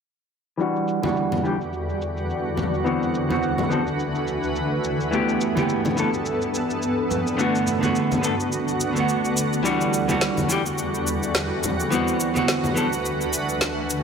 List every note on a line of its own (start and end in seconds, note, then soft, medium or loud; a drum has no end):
0.57 2.84 E2 medium
0.57 4.80 D3 medium
0.57 0.99 E3 medium
0.57 1.00 G3 medium
0.57 2.84 G3 medium
0.57 1.00 D4 medium
0.57 4.80 F#4 medium
0.57 1.01 F#4 medium
0.57 shaker soft
0.76 shaker soft
0.88 shaker medium
1.02 1.41 E3 medium
1.02 1.41 G3 medium
1.02 1.42 D4 medium
1.02 1.43 F#4 medium
1.02 high conga medium
1.02 shaker soft
1.17 shaker soft
1.32 high conga medium
1.32 low conga medium
1.32 shaker soft
1.43 1.55 E3 medium
1.43 1.55 G3 medium
1.43 1.56 D4 medium
1.43 1.56 G4 medium
1.43 shaker medium
1.61 shaker soft
1.73 shaker soft
1.89 shaker soft
2.02 shaker medium
2.17 shaker soft
2.30 shaker soft
2.57 low conga medium
2.57 shaker medium
2.74 shaker soft
2.84 4.83 D2 medium
2.84 3.26 E3 medium
2.84 7.35 E3 medium
2.84 3.26 B3 medium
2.84 3.27 C4 medium
2.84 3.27 F#4 medium
2.84 4.82 B4 medium
2.84 shaker soft
3.03 shaker soft
3.15 shaker medium
3.29 3.67 E3 medium
3.29 3.68 B3 medium
3.29 3.68 C4 medium
3.29 3.69 F#4 medium
3.29 high conga medium
3.29 shaker soft
3.43 shaker soft
3.58 high conga medium
3.58 low conga medium
3.58 shaker soft
3.69 3.81 E3 medium
3.69 3.81 B3 medium
3.69 3.82 C4 medium
3.69 3.82 A4 medium
3.69 shaker medium
3.87 shaker soft
3.99 shaker soft
4.15 shaker soft
4.27 shaker medium
4.43 shaker soft
4.56 shaker soft
4.84 7.37 G2 medium
4.84 9.62 B3 medium
4.84 7.36 A4 medium
4.84 shaker medium
5.00 shaker soft
5.11 5.52 E3 medium
5.11 5.53 A3 medium
5.11 5.53 B3 medium
5.11 5.54 G4 loud
5.11 shaker soft
5.29 shaker soft
5.41 shaker medium
5.55 5.94 E3 medium
5.55 5.94 A3 medium
5.55 5.95 B3 medium
5.55 5.95 G4 medium
5.55 high conga medium
5.55 shaker soft
5.69 shaker soft
5.85 high conga medium
5.85 low conga medium
5.85 shaker soft
5.96 6.08 E3 medium
5.96 6.08 A3 medium
5.96 6.09 B3 medium
5.96 6.09 A4 medium
5.96 shaker medium
6.14 shaker soft
6.26 shaker soft
6.42 shaker soft
6.54 shaker medium
6.70 shaker soft
6.82 shaker soft
7.11 low conga medium
7.11 shaker medium
7.27 shaker soft
7.37 9.63 D2 medium
7.37 7.78 D3 medium
7.37 9.63 D3 medium
7.37 7.79 A3 medium
7.37 7.80 B3 medium
7.37 9.63 F#4 medium
7.37 7.80 F#4 loud
7.37 shaker soft
7.55 shaker soft
7.67 high conga medium
7.67 shaker medium
7.81 8.20 D3 medium
7.81 8.20 A3 medium
7.81 8.21 B3 medium
7.81 8.21 F#4 medium
7.81 high conga medium
7.81 shaker soft
7.95 shaker soft
8.12 high conga medium
8.12 low conga medium
8.12 shaker soft
8.21 8.33 D3 medium
8.21 8.34 A3 medium
8.21 8.34 B3 medium
8.21 8.35 A4 medium
8.21 shaker medium
8.40 shaker soft
8.52 shaker soft
8.68 shaker soft
8.80 shaker medium
8.93 9.61 D3 medium
8.93 9.62 A3 medium
8.93 shaker soft
8.97 9.63 B3 medium
8.97 9.64 F#4 medium
9.09 shaker soft
9.25 shaker soft
9.37 shaker medium
9.53 shaker soft
9.63 11.89 E2 medium
9.63 11.89 D3 medium
9.63 10.05 E3 medium
9.63 10.05 G3 medium
9.63 11.89 G3 medium
9.63 10.06 D4 medium
9.63 13.86 F#4 medium
9.63 10.06 F#4 medium
9.63 shaker soft
9.81 shaker soft
9.93 shaker medium
10.08 10.46 E3 medium
10.08 10.47 G3 medium
10.08 10.48 D4 medium
10.08 10.48 F#4 medium
10.08 high conga medium
10.08 shaker soft
10.21 snare medium
10.21 shaker soft
10.37 high conga medium
10.37 low conga medium
10.37 shaker soft
10.49 10.60 E3 medium
10.49 10.61 G3 medium
10.49 10.61 D4 medium
10.49 10.62 G4 medium
10.49 shaker medium
10.66 shaker soft
10.78 shaker soft
10.95 shaker soft
11.07 shaker medium
11.23 shaker soft
11.35 snare medium
11.35 shaker soft
11.63 low conga medium
11.63 shaker medium
11.80 shaker soft
11.90 13.87 D2 medium
11.90 13.87 D3 medium
11.90 12.32 E3 medium
11.90 14.03 E3 medium
11.90 12.32 B3 medium
11.90 12.33 C4 medium
11.90 12.33 F#4 loud
11.90 13.87 B4 medium
11.90 shaker soft
12.08 shaker soft
12.20 shaker medium
12.34 12.73 E3 medium
12.34 12.73 B3 medium
12.34 12.74 C4 medium
12.34 12.74 F#4 medium
12.34 high conga medium
12.34 shaker soft
12.48 snare medium
12.48 shaker soft
12.64 high conga medium
12.64 low conga medium
12.64 shaker soft
12.74 12.86 E3 medium
12.74 12.87 B3 medium
12.74 12.87 C4 medium
12.74 12.88 A4 medium
12.74 shaker medium
12.93 shaker soft
13.05 shaker soft
13.21 shaker soft
13.33 shaker medium
13.49 shaker soft
13.61 snare medium
13.61 shaker soft
13.90 shaker medium